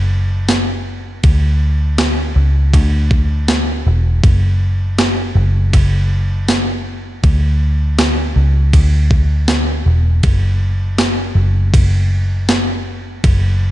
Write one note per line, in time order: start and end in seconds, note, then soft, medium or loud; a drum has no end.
0.00 1.20 F#1 loud
0.48 snare medium
0.48 ride soft
0.48 tambourine medium
1.24 2.32 D2 medium
1.24 kick loud
1.24 ride medium
1.98 snare loud
1.98 ride medium
1.98 tambourine medium
2.36 2.72 C#2 medium
2.74 3.82 D2 loud
2.74 kick medium
2.74 ride medium
3.11 kick medium
3.48 snare loud
3.48 ride soft
3.48 tambourine medium
3.87 4.22 E1 loud
4.24 5.32 F#1 loud
4.24 kick loud
4.24 ride soft
4.98 snare loud
4.98 ride medium
4.98 tambourine medium
5.36 5.72 F#1 loud
5.73 7.20 F#1 loud
5.73 kick medium
5.73 ride medium
6.48 snare loud
6.48 ride soft
6.48 tambourine medium
7.24 8.32 D2 loud
7.24 kick loud
7.24 ride soft
7.98 snare loud
7.98 ride medium
7.98 tambourine medium
8.36 8.72 C#2 medium
8.73 9.82 D2 loud
8.73 kick medium
8.73 ride medium
9.11 kick medium
9.48 snare loud
9.48 ride soft
9.48 tambourine medium
9.86 10.22 E1 loud
10.23 11.32 F#1 loud
10.23 kick loud
10.23 ride soft
10.98 snare loud
10.98 ride medium
10.98 tambourine medium
11.35 11.72 F#1 loud
11.74 13.20 F#1 loud
11.74 kick loud
11.74 ride medium
12.49 snare loud
12.49 ride soft
12.49 tambourine medium
13.24 13.71 F#1 loud
13.24 kick loud
13.24 ride medium